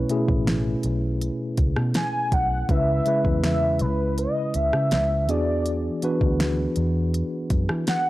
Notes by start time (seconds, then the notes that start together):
Already playing: B2 A3 C#4 E4 B4 C#5
0.10 B2 A3 C#4 E4 G#4, closed hi-hat
0.28 A1, kick
0.47 snare, closed hi-hat
0.83 B1, closed hi-hat
1.21 closed hi-hat
1.57 C#2, kick, closed hi-hat
1.76 B2, cross-stick
1.94 G#5, snare, closed hi-hat
2.32 B1 F#5, kick, closed hi-hat
2.69 C#2 C#3 G#3 C#4 E4 B4 E5, kick, closed hi-hat
3.06 C#3 G#3 C#4 E4 B4, closed hi-hat
3.25 E2, kick
3.44 E5, snare, closed hi-hat
3.79 C#2 B4, closed hi-hat
4.18 D#5, closed hi-hat
4.54 C#2 E5, closed hi-hat
4.73 C#3, cross-stick
4.91 C#2, snare, closed hi-hat
5.28 E2 E3 B3 D4 F#4 G#4 D5, closed hi-hat
5.66 closed hi-hat
6.02 E3 B3 D4 F#4 B4, closed hi-hat
6.21 D2, kick
6.40 snare, closed hi-hat
6.76 E2, closed hi-hat
7.14 closed hi-hat
7.50 F#2, kick, closed hi-hat
7.69 E3, cross-stick
7.87 F#5, snare, closed hi-hat